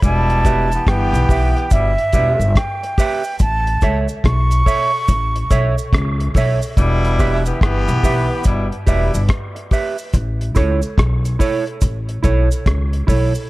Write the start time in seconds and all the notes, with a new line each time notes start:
0.02 E1 B2 G3 E4 A5, kick, closed hi-hat, cabasa
0.30 closed hi-hat
0.45 G4 B4 E5, kick, closed hi-hat, cabasa
0.72 E3 B3 G4, closed hi-hat, cabasa
0.87 G1 E3 B3 G4 G5, kick, cross-stick, closed hi-hat
1.13 B1, closed hi-hat, cabasa
1.29 B1 G4 B4 E5, kick, open hi-hat, cabasa
1.56 closed hi-hat
1.71 G1 B2 G3 E4 E5, kick, closed hi-hat, cabasa
1.98 closed hi-hat
2.13 E1 B2 G3 E4 G4 B4 E5, kick, closed hi-hat, cabasa
2.39 G1, cabasa
2.56 G5, kick, cross-stick, closed hi-hat
2.83 muted clean electric guitar stroke, closed hi-hat
2.98 G4 B4 E5, kick, open hi-hat, cabasa
3.24 cabasa
3.39 A1 A5, kick, closed hi-hat, cabasa
3.67 closed hi-hat
3.81 C#2 A4 C#5 E5, kick, cross-stick, closed hi-hat, cabasa
4.08 cabasa
4.24 B1 C#6, kick, cross-stick, closed hi-hat
4.51 closed hi-hat, cabasa
4.66 A4 C#5 E5, kick, open hi-hat, cabasa
5.08 A1, kick, closed hi-hat, cabasa
5.36 closed hi-hat
5.50 B1 A4 C#5 E5, kick, closed hi-hat, cabasa
5.78 cabasa
5.93 C#2, kick, cross-stick, closed hi-hat
6.20 closed hi-hat
6.34 B1 A4 C#5 E5, kick, open hi-hat, cabasa
6.62 cabasa
6.76 E1 B2 G3 E4, kick, closed hi-hat, cabasa
7.05 closed hi-hat
7.19 G4 B4 E5, kick, cross-stick, open hi-hat, cabasa
7.46 E3 B3 G4, closed hi-hat, cabasa
7.61 G1 E3 B3 G4, kick, cross-stick, closed hi-hat
7.88 B1, closed hi-hat, cabasa
8.03 B1 G4 B4 E5, kick, open hi-hat, cabasa
8.44 G1 B2 G3 E4, kick, closed hi-hat, cabasa
8.72 closed hi-hat
8.87 E1 B2 G3 E4 G4 B4 E5, kick, open hi-hat, cabasa
9.14 G1, cabasa
9.29 kick, cross-stick, closed hi-hat
9.56 muted clean electric guitar stroke, closed hi-hat
9.71 G4 B4 E5, kick, open hi-hat, cabasa
9.98 cabasa
10.14 A1, kick, closed hi-hat, cabasa
10.41 closed hi-hat
10.55 C#2 E4 A4 C#5, kick, cross-stick, closed hi-hat, cabasa
10.82 cabasa
10.98 B1, kick, cross-stick, closed hi-hat
11.25 closed hi-hat, cabasa
11.39 E4 A4 C#5, kick, open hi-hat, cabasa
11.67 closed hi-hat
11.81 A1, kick, closed hi-hat, cabasa
12.09 closed hi-hat
12.23 B1 E4 A4 C#5, kick, closed hi-hat, cabasa
12.51 closed hi-hat, cabasa
12.66 C#2, kick, cross-stick, closed hi-hat
12.93 closed hi-hat
13.07 B1 E4 A4 C#5, kick, open hi-hat, cabasa
13.35 cabasa